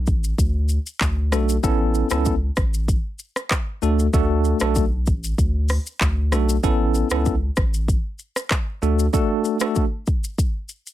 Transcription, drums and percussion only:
0.06 kick, shaker
0.24 shaker
0.38 kick, shaker
0.69 shaker
0.86 shaker
1.01 kick, clap, shaker
1.32 cross-stick, shaker
1.49 shaker
1.64 kick, shaker
1.94 shaker
2.10 cross-stick, shaker
2.25 kick, shaker
2.56 kick, cross-stick, shaker
2.74 shaker
2.88 kick, shaker
3.19 shaker
3.36 cross-stick, shaker
3.51 kick, cross-stick, clap, shaker
3.82 shaker
3.99 shaker
4.13 kick, shaker
4.44 shaker
4.60 cross-stick, shaker
4.75 kick, shaker
5.06 kick, shaker
5.24 shaker
5.38 kick, shaker
5.69 cross-stick, open hi-hat, shaker
5.86 shaker
6.01 kick, clap, shaker
6.32 cross-stick, shaker
6.49 shaker
6.64 kick, shaker
6.94 shaker
7.10 cross-stick, shaker
7.25 kick, shaker
7.56 kick, cross-stick, shaker
7.74 shaker
7.88 kick, shaker
8.19 shaker
8.36 cross-stick, shaker
8.51 kick, cross-stick, clap, shaker
8.82 shaker
8.99 shaker
9.14 kick, shaker
9.44 shaker
9.60 cross-stick, shaker
9.75 kick, shaker
10.06 kick, shaker
10.24 shaker
10.38 kick, shaker
10.69 shaker
10.86 shaker

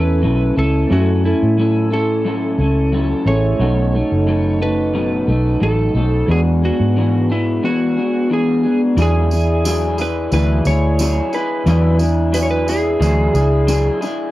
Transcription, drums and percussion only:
8.98 tambourine
9.31 tambourine
9.65 tambourine
9.98 tambourine
10.32 tambourine
10.65 tambourine
10.99 tambourine
11.33 tambourine
11.67 tambourine
11.99 tambourine
12.34 tambourine
12.68 tambourine
13.02 tambourine
13.35 tambourine
13.68 tambourine
14.02 tambourine

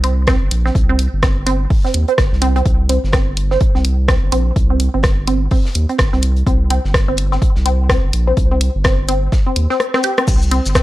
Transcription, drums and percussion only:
0.04 closed hi-hat
0.27 kick, cross-stick, snare, closed hi-hat
0.51 closed hi-hat
0.66 snare
0.75 kick, closed hi-hat
0.99 closed hi-hat
1.22 kick, cross-stick, snare, closed hi-hat
1.47 closed hi-hat
1.70 kick, open hi-hat
1.85 snare
1.94 closed hi-hat
2.08 closed hi-hat
2.18 kick, cross-stick, snare, closed hi-hat
2.33 snare
2.42 closed hi-hat
2.56 closed hi-hat
2.66 kick, closed hi-hat
2.89 closed hi-hat
3.04 snare
3.13 kick, cross-stick, snare, closed hi-hat
3.37 closed hi-hat
3.51 snare
3.61 kick, closed hi-hat
3.75 snare
3.84 closed hi-hat
4.08 kick, cross-stick, snare, closed hi-hat
4.32 closed hi-hat
4.56 kick, closed hi-hat
4.80 closed hi-hat
5.03 kick, cross-stick, snare, closed hi-hat
5.27 closed hi-hat
5.51 kick, open hi-hat
5.65 snare
5.75 closed hi-hat
5.89 closed hi-hat
5.98 kick, cross-stick, snare, closed hi-hat
6.12 snare
6.22 closed hi-hat
6.36 closed hi-hat
6.47 kick, closed hi-hat
6.70 closed hi-hat
6.84 snare
6.94 kick, cross-stick, snare, closed hi-hat
7.17 closed hi-hat
7.32 snare
7.42 kick, closed hi-hat
7.55 snare
7.66 closed hi-hat
7.89 kick, cross-stick, snare, closed hi-hat
8.13 closed hi-hat
8.37 kick, closed hi-hat
8.61 closed hi-hat
8.84 kick, cross-stick, snare, closed hi-hat
9.09 closed hi-hat
9.32 kick, snare, closed hi-hat
9.56 closed hi-hat
9.70 snare
9.80 cross-stick, closed hi-hat
9.94 cross-stick, snare
10.03 closed hi-hat
10.18 cross-stick, closed hi-hat
10.28 kick, closed hi-hat, crash, shaker
10.42 shaker
10.51 closed hi-hat
10.66 snare, shaker
10.75 kick, cross-stick, snare, closed hi-hat, shaker

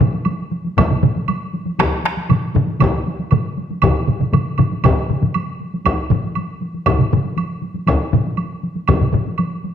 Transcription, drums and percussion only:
0.01 taiko low-mid, taiko mid, taiko high
0.14 taiko high
0.25 taiko high, high woodblock
0.51 taiko high
0.65 taiko high
0.77 taiko, taiko low-mid, taiko mid, taiko high, high woodblock
0.90 taiko low-mid, taiko mid
1.03 taiko low-mid, taiko mid, taiko high
1.16 taiko high
1.28 taiko high, high woodblock
1.53 taiko high
1.66 taiko high
1.79 taiko rim, taiko, taiko high, high woodblock
2.04 taiko rim, taiko high
2.17 taiko high
2.29 taiko low-mid, taiko mid, taiko high, high woodblock
2.55 taiko low-mid, taiko mid, taiko high
2.68 taiko high
2.80 taiko, taiko low-mid, taiko mid, taiko high, high woodblock
3.06 taiko high
3.19 taiko high
3.31 taiko low-mid, taiko mid, taiko high, high woodblock
3.57 taiko high
3.70 taiko high
3.82 taiko, taiko low-mid, taiko mid, taiko high, high woodblock
4.07 taiko low-mid, taiko mid, taiko high
4.19 taiko low-mid, taiko mid, taiko high
4.33 taiko low-mid, taiko mid, taiko high, high woodblock
4.58 taiko low-mid, taiko mid, taiko high, high woodblock
4.72 taiko high
4.84 taiko, taiko low-mid, taiko mid, taiko high, high woodblock
5.09 taiko low-mid, taiko mid, taiko high
5.22 taiko low-mid, taiko mid, taiko high
5.34 taiko high, high woodblock
5.61 taiko high
5.74 taiko high
5.86 taiko, taiko high, high woodblock
6.10 taiko low-mid, taiko mid, taiko high
6.25 taiko high
6.35 taiko high, high woodblock
6.62 taiko high
6.74 taiko high
6.86 taiko, taiko low-mid, taiko mid, taiko high, high woodblock
6.99 taiko low-mid, taiko mid
7.12 taiko low-mid, taiko mid, taiko high
7.24 taiko high
7.37 taiko high, high woodblock
7.62 taiko high
7.74 taiko high
7.87 taiko, taiko high, high woodblock
8.13 taiko low-mid, taiko mid, taiko high
8.26 taiko high
8.37 taiko high, high woodblock
8.63 taiko high
8.76 taiko high
8.88 taiko, taiko low-mid, taiko mid, taiko high, high woodblock
9.01 taiko low-mid, taiko mid
9.13 taiko low-mid, taiko mid, taiko high
9.27 taiko high
9.38 taiko high, high woodblock
9.64 taiko high

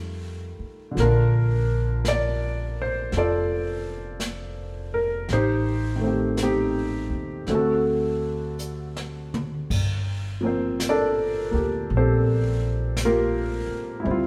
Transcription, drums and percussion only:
0.97 brush sweep, snare
2.05 brush sweep, snare, hi-hat pedal
3.12 brush sweep, snare
4.20 brush sweep, snare, hi-hat pedal
5.29 brush sweep, snare
6.37 brush sweep, snare, hi-hat pedal
7.47 brush sweep, snare
8.59 hi-hat pedal
8.96 snare
9.34 mid tom
9.70 brush sweep, kick, crash
10.80 brush sweep, snare, hi-hat pedal
11.89 brush sweep
12.97 brush sweep, snare, hi-hat pedal
14.04 brush sweep

